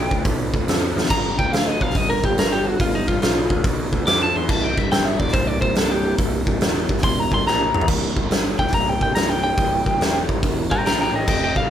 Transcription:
Already playing: G5
0.11 D2 D4 F4 A4 B4, kick
0.25 B1 D4 F4 A4 B4, kick, open hi-hat
0.52 D2 D4 F4 A4 B4, kick
0.66 F2 D4 F4 A4 B4, snare, open hi-hat
0.96 E2 D4 F4 A4 B4, snare
1.05 snare
1.10 G1 D4 F4 A4 B4 A#5, kick, crash
1.38 D2 D4 F4 A4 B4 G5, kick
1.52 D2 D4 F4 A4 B4 F5, snare, open hi-hat
1.67 D#5
1.80 B1 D4 F4 A4 B4 F5, kick
1.90 snare
1.95 G1 D4 F4 A4 B4 D#5, kick, open hi-hat
2.10 A#4
2.23 G1 D4 F4 G4 A4 B4, kick
2.36 G1 D4 F4 A4 A#4 B4, snare, open hi-hat
2.52 G4
2.65 D4 F4 F#4 A4 B4
2.79 G1 D4 F4 A4 B4, kick, open hi-hat
2.95 D#4
3.08 G1 D4 F4 A4 B4, kick
3.22 B1 D4 F4 A4 B4, snare, open hi-hat
3.50 D2 D4 F4 A4 B4, kick
3.64 B1 D4 F4 A4 B4, kick, open hi-hat
3.91 D2 D4 F4 A4 B4, kick
4.06 F2 D4 F4 A4 B4 D6, snare, open hi-hat
4.23 A5
4.34 E2 D4 F4 A4 B4 C6
4.48 C1 D4 E4 G4 A#4 A5, kick, crash
4.64 G5
4.77 G1 D4 E4 G4 A#4 E5, kick
4.91 G1 D4 E4 G4 A#4 G5, snare, open hi-hat
5.05 E5
5.19 E1 D4 E4 G4 A#4 D5, kick
5.28 snare
5.33 C1 D4 E4 G4 A#4 C5, kick, open hi-hat
5.47 D5
5.61 C1 D4 E4 G4 A#4 C5, kick
5.74 C1 D4 E4 G4 A4 A#4, snare, open hi-hat
5.92 G4
6.04 D4 E4 G4 A#4
6.18 C1 D4 E4 G4 A#4, kick, open hi-hat
6.46 C1 D4 E4 G4 A#4, kick
6.61 E1 D4 E4 G4 A#4, snare, open hi-hat
6.89 G1 D4 E4 G4 A#4, kick
6.98 snare
7.03 E1 D4 E4 G4 A#4 C6, kick, open hi-hat
7.20 A#5
7.31 G1 D4 E4 G4 A#4 C6, kick
7.46 A#1 D4 E4 G4 A#4 A#5, snare
7.73 A1 D4 E4 G4 A#4, mid tom
7.81 floor tom
7.88 C1 D4 E4 G4 A#4, kick, crash
8.16 G1 D4 E4 G4 A#4, kick
8.29 G1 D4 E4 G4 A#4, snare, open hi-hat
8.58 E1 D4 E4 G4 A#4 G5, kick
8.68 D4 E4, snare
8.72 C1 G4 A#4 A#5, kick, open hi-hat
8.89 G5
9.01 C1 D4 E4 G4 A#4 G5, kick
9.13 C1 D4 E4 G4 A#4 A#5, snare, open hi-hat
9.30 G5
9.44 D4 E4 G4 A#4 G5
9.57 C1 D4 E4 G4 A#4, kick, open hi-hat
9.84 C1 D4 E4 G4 A#4, kick
9.99 E1 D4 E4 G4 A#4, snare, open hi-hat
10.27 G1 D4 E4 G4 A#4, kick
10.43 E1 D4 E4 G4 A#4, kick, open hi-hat
10.70 G1 D4 E4 G4 A#4 G5 A#5, kick
10.85 A#1 D4 E4 G4 A#4 G5 A#5, snare, open hi-hat
11.01 G5 A#5
11.13 A1 D4 E4 G4 A#4 D#5 G5
11.27 F1 C4 D#4 G4 A4 D#5 G5, kick, crash
11.44 D#5 G5
11.55 C2 C4 D#4 G4 A4 F5, kick

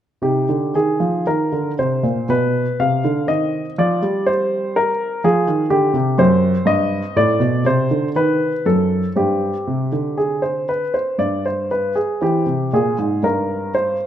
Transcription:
0.22 C3 D#4 G4
0.49 D3
0.74 D#3 G#4
1.00 F3
1.27 D#3 A#4
1.52 D3
1.79 C3 C5
2.03 A#2
2.29 B2 B4
2.80 C3 F5
3.04 D3
3.27 D#3 C4 D#5
3.78 F3 D5
4.02 G3
4.26 C5
4.76 A#4
5.24 F3 G#4
5.47 D#3
5.70 D3 G4
5.93 C3
6.18 F#2 C4 C5
6.65 G2 D#5
7.16 A2 D5
7.40 B2
7.65 C3 C5
7.91 D3
8.15 D#3 B4
8.66 F#2 A4
9.16 G2 C4 G4
9.67 C3
9.92 D3
10.18 G#4
10.42 C5
10.69 B4
10.94 C5
11.18 G2 D5
11.46 C5
11.71 B4
11.95 G#4
12.21 E3 C4 G4
12.46 C3
12.73 A#2 G#4
12.98 G#2
13.23 G2 A#4
13.75 C5

